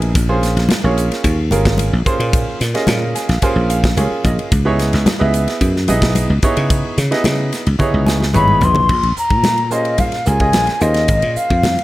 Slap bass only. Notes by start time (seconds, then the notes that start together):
Already playing: A#1
0.15 A#1
0.56 A#1
0.84 A#1
1.24 D#2
1.51 G#1
1.93 A#1
2.19 A#2
2.61 A#2
2.88 A#2
3.29 A#1
3.42 muted slap bass stroke
3.56 A#1
3.97 C#2
4.11 muted slap bass stroke
4.25 A#1
4.52 C#2
4.94 C#2
5.21 C#2
5.61 F#2
5.89 B1
6.30 C#2
6.57 C#3
6.98 C#3
7.25 C#3
7.67 C#2
7.94 C#2
8.35 G#1
8.61 A#1
8.89 A#1
9.03 A#1
9.30 A#2
10.27 C#2
10.54 A#1
10.81 D#2
11.09 G#1
11.22 A#2
11.36 muted slap bass stroke
11.50 F2